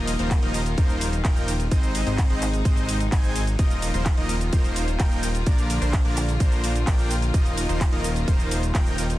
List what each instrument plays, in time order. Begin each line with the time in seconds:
Already playing: analog synth bass D#1, string section D#3 A#3 F4, supersaw synth F3 A#3 D#4 A#4 D#5
0.07 open hi-hat, shaker
0.19 analog synth bass D#1, supersaw synth F3 A#3 D#4 A#4 C5, closed hi-hat, shaker
0.31 kick, clap, closed hi-hat, ride, shaker
0.42 analog synth bass D#1, supersaw synth F3 A#3 D#4 A#4 D#5, closed hi-hat
0.54 open hi-hat, shaker
0.66 closed hi-hat, shaker
0.78 analog synth bass D#1, supersaw synth F3 A#3 D#4 A#4 C5, kick, closed hi-hat, ride, shaker
0.90 closed hi-hat, shaker
1.01 open hi-hat, shaker
1.13 closed hi-hat, shaker
1.25 analog synth bass D#1, supersaw synth F3 A#3 D#4 A#4 G5, kick, clap, closed hi-hat, ride, shaker
1.36 closed hi-hat, shaker
1.48 open hi-hat, shaker
1.60 closed hi-hat, shaker
1.71 analog synth bass G#1, string section C3 G#3 D#4, supersaw synth G#3 C4 D#4 C5 D#5, kick, closed hi-hat, ride, shaker
1.83 closed hi-hat, shaker
1.95 open hi-hat, shaker
2.07 analog synth bass G#1, supersaw synth G#3 C4 D#4 C5 D#5, closed hi-hat, shaker
2.18 kick, clap, closed hi-hat, ride, shaker
2.30 analog synth bass G#1, supersaw synth G#3 C4 D#4 C5 D#5, closed hi-hat
2.42 clap, open hi-hat, shaker
2.54 closed hi-hat, shaker
2.65 analog synth bass G#1, supersaw synth G#3 C4 D#4 C5 D#5, kick, closed hi-hat, ride, shaker
2.77 closed hi-hat, shaker
2.89 open hi-hat, shaker
3.00 closed hi-hat, shaker
3.12 analog synth bass G#1, supersaw synth G#3 C4 D#4 C5 G#5, kick, clap, closed hi-hat, ride, shaker
3.24 closed hi-hat, shaker
3.36 open hi-hat, shaker
3.47 closed hi-hat, shaker
3.59 analog synth bass D#1, string section D#3 A#3 F4, supersaw synth F3 A#3 D#4 A#4 D#5, kick, closed hi-hat, ride, shaker
3.71 closed hi-hat, shaker
3.82 open hi-hat, shaker
3.94 analog synth bass D#1, supersaw synth F3 A#3 D#4 A#4 C5, closed hi-hat, shaker
4.06 kick, clap, closed hi-hat, ride, shaker
4.17 analog synth bass D#1, supersaw synth F3 A#3 D#4 A#4 D#5, closed hi-hat
4.29 open hi-hat, shaker
4.41 closed hi-hat, shaker
4.53 analog synth bass D#1, supersaw synth F3 A#3 D#4 A#4 C5, kick, closed hi-hat, ride, shaker
4.64 closed hi-hat, shaker
4.76 open hi-hat, shaker
4.88 closed hi-hat, shaker
4.99 analog synth bass D#1, supersaw synth F3 A#3 D#4 A#4 G5, kick, clap, closed hi-hat, ride, shaker
5.11 closed hi-hat, shaker
5.23 open hi-hat, shaker
5.35 closed hi-hat, shaker
5.46 analog synth bass A#1, string section D3, supersaw synth F3 A#3 D4 A#4 D5, kick, closed hi-hat, ride, shaker
5.58 closed hi-hat, shaker
5.70 open hi-hat, shaker
5.81 analog synth bass A#1, supersaw synth F3 A#3 D4 A#4 C5, closed hi-hat, shaker
5.93 kick, clap, closed hi-hat, ride, shaker
6.05 analog synth bass A#1, supersaw synth F3 A#3 D4 A#4 D5, closed hi-hat
6.17 clap, open hi-hat, shaker
6.29 closed hi-hat, shaker
6.40 analog synth bass A#1, supersaw synth F3 A#3 D4 A#4 C5, kick, closed hi-hat, ride, shaker
6.52 closed hi-hat, shaker
6.64 open hi-hat, shaker
6.75 closed hi-hat, shaker
6.87 analog synth bass A#1, supersaw synth F3 A#3 D4 A#4 G5, kick, clap, closed hi-hat, ride, shaker
6.99 closed hi-hat, shaker
7.11 open hi-hat, shaker
7.22 closed hi-hat, shaker
7.34 analog synth bass D#1, string section D#3, supersaw synth F3 A#3 D#4 A#4 D#5, kick, closed hi-hat, ride, shaker
7.46 closed hi-hat, shaker
7.57 open hi-hat, shaker
7.69 analog synth bass D#1, supersaw synth F3 A#3 D#4 A#4 C5, closed hi-hat, shaker
7.81 kick, clap, closed hi-hat, ride, shaker
7.92 analog synth bass D#1, supersaw synth F3 A#3 D#4 A#4 D#5, closed hi-hat
8.04 open hi-hat, shaker
8.16 closed hi-hat, shaker
8.28 analog synth bass D#1, supersaw synth F3 A#3 D#4 A#4 C5, kick, closed hi-hat, ride, shaker
8.40 closed hi-hat, shaker
8.51 open hi-hat, shaker
8.63 closed hi-hat, shaker
8.75 analog synth bass D#1, supersaw synth F3 A#3 D#4 A#4 G5, kick, clap, closed hi-hat, ride, shaker
8.86 closed hi-hat, shaker
8.98 open hi-hat, shaker
9.10 closed hi-hat, shaker